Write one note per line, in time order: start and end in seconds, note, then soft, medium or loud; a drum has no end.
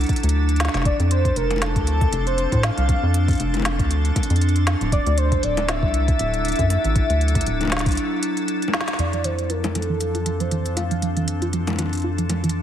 0.00 0.81 F#3 medium
0.00 0.82 D4 medium
0.00 0.82 E4 medium
0.00 4.88 A4 medium
0.00 closed hi-hat soft
0.04 closed hi-hat soft
0.06 kick medium
0.06 closed hi-hat soft
0.09 closed hi-hat soft
0.13 closed hi-hat soft
0.16 closed hi-hat soft
0.20 closed hi-hat soft
0.23 0.69 D2 medium
0.23 closed hi-hat medium
0.29 closed hi-hat medium
0.49 closed hi-hat soft
0.56 snare loud
0.56 closed hi-hat soft
0.60 closed hi-hat medium
0.65 snare medium
0.65 closed hi-hat soft
0.68 snare medium
0.74 0.93 F1 medium
0.74 snare medium
0.74 closed hi-hat soft
0.77 snare soft
0.82 4.88 F3 medium
0.82 4.88 C4 medium
0.82 4.88 D4 medium
0.82 0.97 D5 medium
0.82 kick loud
0.82 snare soft
0.82 closed hi-hat medium
1.00 1.32 F2 medium
1.00 closed hi-hat soft
1.11 1.38 C5 medium
1.11 closed hi-hat medium
1.25 kick loud
1.25 closed hi-hat soft
1.36 1.77 F1 medium
1.36 1.63 A#4 medium
1.36 closed hi-hat medium
1.51 closed hi-hat soft
1.51 high bongo medium
1.56 high bongo soft
1.58 2.26 A4 loud
1.58 snare loud
1.58 closed hi-hat medium
1.58 high bongo medium
1.66 high bongo soft
1.76 2.08 D2 medium
1.76 kick loud
1.76 closed hi-hat soft
1.87 closed hi-hat medium
2.01 kick loud
2.01 closed hi-hat soft
2.12 2.47 F1 loud
2.12 closed hi-hat medium
2.27 2.65 C5 loud
2.27 closed hi-hat soft
2.38 closed hi-hat medium
2.52 2.71 A2 loud
2.52 kick medium
2.52 closed hi-hat soft
2.63 3.40 F5 loud
2.63 snare loud
2.63 closed hi-hat medium
2.63 high bongo soft
2.78 2.96 C2 medium
2.78 closed hi-hat soft
2.89 kick loud
2.89 closed hi-hat medium
3.03 3.35 F2 medium
3.14 closed hi-hat medium
3.28 kick loud
3.28 closed hi-hat soft
3.31 closed hi-hat soft
3.33 closed hi-hat soft
3.35 closed hi-hat soft
3.38 3.81 F1 medium
3.38 closed hi-hat soft
3.40 closed hi-hat medium
3.54 closed hi-hat soft
3.54 high bongo soft
3.57 high bongo soft
3.60 high bongo soft
3.62 snare loud
3.62 closed hi-hat medium
3.62 high bongo medium
3.65 high bongo medium
3.79 4.11 D2 medium
3.79 kick medium
3.79 closed hi-hat soft
3.91 closed hi-hat medium
4.05 closed hi-hat soft
4.16 kick medium
4.16 closed hi-hat medium
4.16 high bongo soft
4.23 closed hi-hat medium
4.30 4.75 F2 medium
4.30 closed hi-hat medium
4.36 closed hi-hat soft
4.41 closed hi-hat medium
4.49 closed hi-hat soft
4.56 closed hi-hat soft
4.67 snare loud
4.67 closed hi-hat medium
4.81 4.99 D1 medium
4.81 closed hi-hat soft
4.92 8.95 F#3 medium
4.92 8.95 D4 medium
4.92 8.95 E4 medium
4.92 8.95 A4 medium
4.92 5.19 D5 loud
4.92 kick loud
4.92 closed hi-hat medium
5.06 5.39 D2 loud
5.06 closed hi-hat soft
5.18 5.45 C5 medium
5.18 closed hi-hat medium
5.32 kick loud
5.32 closed hi-hat soft
5.43 5.84 D1 medium
5.43 5.70 D5 loud
5.43 closed hi-hat medium
5.57 closed hi-hat soft
5.57 high bongo medium
5.68 8.48 E5 loud
5.68 snare loud
5.68 closed hi-hat medium
5.68 high bongo medium
5.83 6.15 C2 medium
5.83 kick medium
5.94 closed hi-hat medium
6.08 kick loud
6.08 closed hi-hat soft
6.19 6.53 D1 loud
6.19 closed hi-hat medium
6.34 closed hi-hat soft
6.45 closed hi-hat medium
6.48 closed hi-hat soft
6.52 closed hi-hat soft
6.56 6.77 F#2 loud
6.56 kick medium
6.56 closed hi-hat soft
6.59 closed hi-hat soft
6.70 closed hi-hat medium
6.70 high bongo soft
6.84 7.03 A1 medium
6.84 closed hi-hat soft
6.96 kick loud
6.96 closed hi-hat medium
7.10 7.42 D2 loud
7.10 closed hi-hat soft
7.21 closed hi-hat soft
7.28 closed hi-hat medium
7.35 kick loud
7.35 closed hi-hat medium
7.41 closed hi-hat medium
7.46 7.88 D1 medium
7.46 closed hi-hat medium
7.61 closed hi-hat soft
7.61 high bongo soft
7.63 high bongo soft
7.65 high bongo soft
7.67 high bongo medium
7.70 snare loud
7.70 closed hi-hat medium
7.70 high bongo medium
7.72 high bongo medium
7.77 snare medium
7.77 closed hi-hat medium
7.80 snare medium
7.86 7.97 C2 medium
7.86 kick medium
7.86 closed hi-hat medium
7.88 closed hi-hat soft
7.91 closed hi-hat soft
7.93 closed hi-hat soft
7.95 closed hi-hat soft
7.97 closed hi-hat medium
8.23 closed hi-hat medium
8.37 closed hi-hat soft
8.48 closed hi-hat medium
8.62 closed hi-hat soft
8.68 high bongo medium
8.74 snare loud
8.81 snare medium
8.88 snare medium
8.88 closed hi-hat soft
8.93 snare medium
8.99 12.62 F2 medium
8.99 12.62 F3 medium
8.99 9.12 F3 medium
8.99 12.62 C4 medium
8.99 12.62 D4 medium
8.99 12.62 A4 medium
8.99 9.26 D5 medium
8.99 closed hi-hat medium
9.13 9.20 F3 medium
9.13 closed hi-hat soft
9.24 9.38 E3 medium
9.24 9.51 C5 medium
9.24 closed hi-hat medium
9.39 closed hi-hat soft
9.50 9.59 F4 medium
9.50 9.77 A#4 medium
9.50 closed hi-hat medium
9.64 9.74 F3 medium
9.64 closed hi-hat soft
9.64 high bongo medium
9.64 shaker medium
9.75 9.84 F3 medium
9.75 10.42 A4 loud
9.75 closed hi-hat medium
9.75 high bongo soft
9.82 closed hi-hat soft
9.89 10.00 E3 medium
10.01 closed hi-hat medium
10.01 shaker medium
10.15 10.22 F4 medium
10.15 closed hi-hat soft
10.26 10.39 F3 medium
10.26 closed hi-hat medium
10.40 10.47 F3 medium
10.40 10.76 C5 loud
10.40 closed hi-hat soft
10.51 10.65 E3 medium
10.51 closed hi-hat medium
10.66 closed hi-hat soft
10.66 shaker medium
10.77 10.86 F4 medium
10.77 11.49 F5 loud
10.77 closed hi-hat medium
10.77 high bongo soft
10.91 11.01 F3 medium
10.91 closed hi-hat soft
11.02 11.11 F3 medium
11.02 closed hi-hat medium
11.17 11.27 E3 medium
11.17 closed hi-hat soft
11.28 closed hi-hat medium
11.42 11.49 F4 medium
11.42 closed hi-hat soft
11.53 11.66 F3 medium
11.53 closed hi-hat medium
11.67 11.74 F3 medium
11.67 closed hi-hat soft
11.67 high bongo medium
11.67 shaker medium
11.70 high bongo medium
11.73 high bongo soft
11.76 closed hi-hat medium
11.76 high bongo soft
11.79 11.92 E3 medium
11.79 high bongo soft
11.82 high bongo soft
11.86 high bongo soft
11.89 closed hi-hat soft
11.89 high bongo soft
11.95 closed hi-hat soft
11.97 closed hi-hat soft
12.00 closed hi-hat soft
12.02 12.13 F4 medium
12.02 closed hi-hat soft
12.18 12.28 F3 medium
12.18 closed hi-hat soft
12.29 12.38 F3 medium
12.29 closed hi-hat medium
12.29 high bongo soft
12.44 12.54 E3 medium
12.44 closed hi-hat soft
12.49 closed hi-hat medium